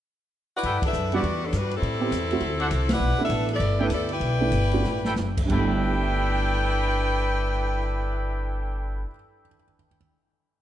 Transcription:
0.56 saxophone section E4 B4 D5 F#5
0.63 upright bass G2, trumpet section E4 A4 B4 G5, kick, ride
0.82 saxophone section D4 A4 B4 E5, muted upright bass stroke, kick, ride
0.93 upright bass F#2, hi-hat pedal
1.12 grand piano G3 B3 D4 F#4, saxophone section B3 G4, trumpet section E4 G4 D5 F#5, ride
1.16 saxophone section F#4 D5
1.23 upright bass E2, kick, ride
1.45 saxophone section F#3 B3 D4 A4
1.52 upright bass G2, saxophone section B4, kick, hi-hat pedal, ride
1.57 saxophone section G3 D4 F#4
1.71 ride
1.76 saxophone section G3 C4 E4 A4
1.82 upright bass A2, kick, ride
2.00 grand piano B3 C4 E4 G4
2.11 upright bass E2, kick, hi-hat pedal, ride
2.31 grand piano A3 C4 E4 F#4, ride
2.41 upright bass D2, kick, ride
2.60 trumpet section D4 A4 C5 F#5, ride
2.71 upright bass C2, kick, hi-hat pedal, ride
2.89 saxophone section B4 F#5, snare, ride
2.93 saxophone section E4 D5
3.00 upright bass B1
3.18 grand piano A3 B3 D4 E4, saxophone section D4 B4
3.23 saxophone section A4 E5
3.29 upright bass A1, kick, hi-hat pedal, ride
3.49 ride
3.53 saxophone section B3 E4 A4 D5
3.60 upright bass G1, kick, ride
3.78 grand piano A3 B3 D4 E4, saxophone section A3 D4 E4 B4, trumpet section E4 A4 B4 G5
3.90 upright bass D2, saxophone section B3 E4 A4 D5, kick, hi-hat pedal, ride
4.09 saxophone section E4 B4 D5 G5, ride
4.20 upright bass B1, kick, ride
4.41 grand piano A3 B3 D4 E4
4.52 upright bass G1, kick, hi-hat pedal, ride
4.72 grand piano A3 B3 D4 F#4, ride
4.84 upright bass A1, snare
5.04 trumpet section E4 A4 B4 G5, snare
5.16 upright bass F#1, snare, hi-hat pedal
5.37 kick, crash
5.45 grand piano G2 G3
5.50 upright bass G1, grand piano A3, trumpet section E4 A4 B4 G5, saxophone section E4 B4 D5 G5, kick, crash
5.54 grand piano B3 E4
5.86 grand piano G4
6.02 grand piano E5
6.11 grand piano G5
6.21 grand piano B5
6.32 grand piano E6
6.43 grand piano G6

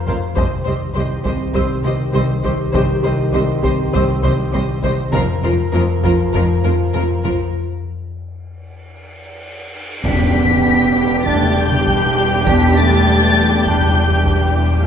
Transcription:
Already playing: french horn section F3 A#4
0.07 double bass section F1, cello section F2, marimba F2, viola section A#4, violin section C5 F5, taiko
0.36 double bass section C2, cello section C2, marimba C3, french horn section D#3 G4, viola section G4, violin section C5 D#5, taiko
0.65 cello section C2, double bass section C2, marimba C3, viola section G4, violin section C5 D#5
0.94 double bass section C2, cello section C2, marimba C3, viola section G4, violin section C5
0.98 violin section D#5
1.25 cello section C2, double bass section C2, marimba C4, viola section G4, violin section C5 D#5, taiko
1.54 cello section C2, double bass section C2, marimba C3, viola section G4, violin section C5 D#5, taiko
1.84 cello section C2, double bass section C2, marimba C3, viola section G4, violin section C5 D#5
2.13 cello section C2, double bass section C2, marimba C3, viola section G4, violin section C5 D#5
2.43 cello section C2, double bass section C2, marimba C3, viola section G4, violin section C5 D#5, taiko
2.73 double bass section C2, cello section C2, marimba C3, viola section G4, violin section C5 D#5, taiko
3.03 double bass section C2, cello section C2, marimba C3, viola section G4, violin section C5 D#5
3.33 double bass section C2, cello section C2, marimba C3, viola section G4, violin section C5 D#5
3.62 double bass section C2, cello section C2, marimba C4, viola section G4, violin section C5 D#5, taiko
3.93 double bass section C2, cello section C2, marimba C3, viola section G4, violin section C5 D#5, taiko
4.22 double bass section C2, cello section C2, marimba C3, viola section G4, violin section C5 D#5
4.52 double bass section C2, cello section C2, marimba C3, viola section G4, violin section C5 D#5
4.82 double bass section C2, cello section C2, marimba C3, viola section G4, violin section C5 D#5, taiko
5.12 double bass section F1, marimba F2, cello section F2, french horn section F3 A#4, viola section F4, violin section A#4 C5, taiko
5.43 double bass section F1, marimba F2, cello section F2, viola section F4, violin section A#4 C5
5.73 double bass section F1, marimba F2, cello section F2, viola section F4, violin section A#4 C5
6.03 double bass section F1, cello section F2, marimba F3, viola section F4, violin section A#4 C5, taiko
6.33 double bass section F1, marimba F2, cello section F2, viola section F4, violin section A#4 C5, taiko
6.63 double bass section F1, marimba F2, cello section F2, viola section F4, violin section A#4 C5
6.94 double bass section F1, marimba F2, cello section F2, viola section F4, violin section A#4 C5
7.24 double bass section F1, marimba F2, cello section F2, viola section F4, violin section A#4 C5, taiko
7.55 cymbal swell
10.04 double bass section E1, marimba E2, timpani E2, cello section E2, trombone section G3 D4, viola section G3 D4, french horn section B3, violin section G4 G5 B6, taiko, tam-tam, impact
10.36 marimba E3
10.65 marimba E3
10.97 marimba E3
11.25 marimba E2, trombone section G3 D4, french horn section A3, violin section A6, taiko
11.41 taiko mid
11.56 marimba E2, french horn section G3, violin section G6
11.72 taiko mid
11.86 marimba E3, taiko
12.16 marimba E2
12.45 marimba E2, trombone section G3 D4, french horn section B3, violin section B6, taiko
12.76 marimba E3, french horn section A3, violin section A6
13.06 marimba E3
13.36 marimba E3
13.65 marimba E2, french horn section G3, trombone section G3 D4, violin section G6, taiko
13.81 taiko mid
13.96 marimba E2
14.11 taiko mid
14.26 marimba E3, taiko
14.55 marimba E2

